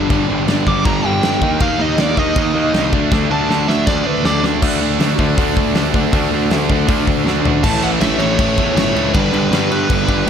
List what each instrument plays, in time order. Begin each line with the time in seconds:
Already playing: overdriven electric guitar G3 D4, lead electric guitar D4
0.10 picked electric bass G1, overdriven electric guitar G2 D3 G3, kick, crash
0.29 picked electric bass G1, overdriven electric guitar G2 D3 G3
0.47 picked electric bass G1, overdriven electric guitar G2 D3 G3, snare, crash
0.67 picked electric bass G1, overdriven electric guitar G2 D3 G3, lead electric guitar D6, kick
0.85 picked electric bass G1, overdriven electric guitar G2 D3 G3, lead electric guitar A#5, kick, crash
1.04 picked electric bass G1, overdriven electric guitar G2 D3 G3, lead electric guitar G5
1.23 picked electric bass G1, overdriven electric guitar G2 D3 G3, snare, crash
1.41 picked electric bass D#2, overdriven electric guitar D#3 A#3 D#4, kick
1.60 picked electric bass D#2, overdriven electric guitar D#3 A#3 D#4, lead electric guitar F5, kick, crash
1.79 picked electric bass D#2, overdriven electric guitar D#3 A#3 D#4, lead electric guitar D#5
1.97 picked electric bass D#2, overdriven electric guitar D#3 A#3 D#4, lead electric guitar D5, snare, crash
2.17 picked electric bass D#2, overdriven electric guitar D#3 A#3 D#4, lead electric guitar D#5, kick
2.36 picked electric bass D#2, overdriven electric guitar D#3 A#3 D#4, kick, crash
2.54 picked electric bass D#2, overdriven electric guitar D#3 A#3 D#4
2.73 picked electric bass C2, overdriven electric guitar D#3 A#3 D#4, snare, crash
2.92 picked electric bass D2, overdriven electric guitar D3 A3 D4, kick
3.12 picked electric bass D2, overdriven electric guitar D3 A3 D4, kick, snare
3.31 picked electric bass D2, overdriven electric guitar D3 A3 D4, lead electric guitar A5
3.49 picked electric bass D2, overdriven electric guitar D3 A3 D4, snare
3.68 picked electric bass D2, overdriven electric guitar D3 A3 D4, lead electric guitar E5, snare
3.87 picked electric bass D2, overdriven electric guitar D3 A3 D4, lead electric guitar D5, kick, snare
4.05 picked electric bass D2, overdriven electric guitar D3 A3 D4, lead electric guitar B4
4.24 picked electric bass D2, overdriven electric guitar D3 A3 D4, lead electric guitar D5, snare
4.43 picked electric bass D2, overdriven electric guitar D3 A3 D4, snare
4.62 picked electric bass D2, overdriven electric guitar D3 A3 D4, kick, crash
4.81 picked electric bass D2
4.99 picked electric bass D2, overdriven electric guitar D3 A3 D4, snare, open hi-hat
5.18 picked electric bass D2, overdriven electric guitar D3 A3 D4, kick
5.37 picked electric bass D2, overdriven electric guitar D3 A3 D4, kick, open hi-hat
5.57 picked electric bass D2, kick
5.74 picked electric bass D2, overdriven electric guitar D3 A3 D4, snare, open hi-hat
5.94 picked electric bass D2, overdriven electric guitar D3 A3 D4, kick
6.13 picked electric bass D2, overdriven electric guitar D3 A3 D4, kick, open hi-hat
6.32 picked electric bass D2
6.51 picked electric bass D2, overdriven electric guitar D3 A3 D4, snare, open hi-hat
6.70 picked electric bass D2, overdriven electric guitar D3 A3 D4, kick
6.88 picked electric bass D2, overdriven electric guitar D3 A3 D4, kick, open hi-hat
7.07 picked electric bass D2, kick
7.25 picked electric bass D2, overdriven electric guitar D3 A3 D4, snare
7.43 picked electric bass D2, overdriven electric guitar D3 A3 D4, floor tom
7.64 picked electric bass A1, overdriven electric guitar A2 E3 A3, lead electric guitar A5, kick, crash
7.82 overdriven electric guitar A2 E3 A3, lead electric guitar F#5, crash
8.00 picked electric bass A1, overdriven electric guitar A2 E3 A3, lead electric guitar E5, snare, crash
8.18 picked electric bass A1, overdriven electric guitar A2 E3 A3, lead electric guitar C#5, crash
8.38 picked electric bass A1, overdriven electric guitar A2 E3 A3, kick, crash
8.57 picked electric bass E2, overdriven electric guitar A2 E3 A3, kick, crash
8.75 picked electric bass G1, overdriven electric guitar A2 E3 A3, lead electric guitar C#5, snare, crash
8.94 picked electric bass C#2, overdriven electric guitar A2 E3 A3, crash
9.14 picked electric bass G1, overdriven electric guitar G2 D3 G3, lead electric guitar B4, kick, crash
9.32 picked electric bass G1, overdriven electric guitar G2 D3 G3, crash
9.51 picked electric bass G2, overdriven electric guitar G2 D3 G3, snare, crash
9.71 overdriven electric guitar G2 D3 G3, lead electric guitar B4, crash
9.90 picked electric bass G1, overdriven electric guitar G2 D3 G3, kick, crash
10.08 picked electric bass G1, overdriven electric guitar G2 D3 G3, kick, crash
10.26 picked electric bass G1, distorted electric guitar G2